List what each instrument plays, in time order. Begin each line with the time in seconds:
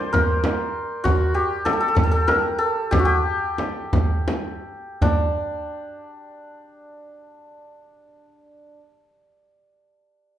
Already playing: santur G4 A#4 C5 D5
0.13 santur A#4, frame drum, tombak dum
0.44 tombak tek, frame drum
1.04 santur F#4, frame drum, tombak dum
1.34 santur G4
1.65 santur A4, tombak tek, frame drum
1.73 santur A4
1.80 santur A4
1.88 santur A4
1.95 santur A4, frame drum, tombak dum
2.03 santur A4
2.12 santur A4
2.28 santur A#4, tombak tek, frame drum
2.59 santur A4
2.91 santur G4, frame drum, tombak dum
2.99 santur F#4
3.05 santur G4
3.25 tombak ka
3.58 tombak tek, frame drum
3.93 frame drum, tombak dum
4.28 tombak tek, frame drum
5.01 santur D4, tombak dum, frame drum